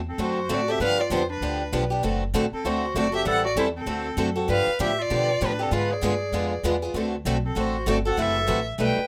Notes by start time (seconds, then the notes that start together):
Already playing: E2
0.08 C4 A4
0.18 F#2 D3 A3 C4 F#4 A4
0.24 C5
0.49 A2 D3 A3 C4 F#4 A4
0.54 D5
0.68 C4 F#4 G4 A4 E5
0.79 G2 D3 F3 B3 D4 G4 B4 F5
1.00 F4 D5
1.10 F2 D3 F3 B3 D4 F4 G4 C5
1.29 D4 B4
1.41 D2 D3 F3 B3 D4 G4
1.72 B1 D3 F3 B3 D4 G4
1.90 B3 D4 G4
2.03 F#1 D3 A3 C4 F#4 A4
2.34 A1 D3 A3 C4 F#4 A4
2.52 C4 A4, muted upright bass stroke
2.64 D2 D3 A3 C4 F#4 A4 C5
2.94 F#1 D3 A3 C4 F#4 A4 D5
3.12 C4 F#4 G4 A4 E5
3.25 A1 E3 G3 C4 E4 A4 F#5
3.45 F#4 D5
3.56 E2 E3 G3 C4 E4 A4 C5
3.76 C4 A4
3.86 D2 D3 A3 C4 F#4 A4
4.17 F#2 D3 A3 C4 F#4 A4
4.36 C4 F#4 A4
4.48 G2 D3 F3 B3 D4 G4 B4 F5
4.67 muted upright bass stroke
4.79 A2 D3 F3 B3 D4 G4
4.84 E5
4.99 F4 D5
5.10 B2 D3 F3 B3 D4 G4
5.41 A2 D3 F3 B3 D4 G4
5.45 B4
5.59 B3 C4 D4 G4 A4
5.71 G#2 D3 G#3 B3 F4 G#4
5.75 B4
5.91 G#4 D5
6.02 G2 D3 G#3 B3 F4 G#4
6.32 F2 D3 G#3 B3 F4 G#4
6.63 E2 D3 G#3 B3 F4 G#4
6.82 B3 F4 G#4
6.94 D2 D3 A3 C4 F#4 A4
7.25 B1 D3 A3 C4 F#4 A4
7.44 C4 A4
7.56 A1 D3 A3 C4 F#4 A4
7.60 C5
7.87 G1 D3 A3 C4 F#4 A4 D5
8.05 C4 F#4 A4 F#5
8.17 F#1 C3 E3 F#3 A3 C4 E4 F#4 A4
8.21 E5
8.47 A1 C3 E3 F#3 A3 C4 E4 F#4 A4
8.78 B1 B2 G3 A3 D#4 A4 B4 G5
8.97 muted upright bass stroke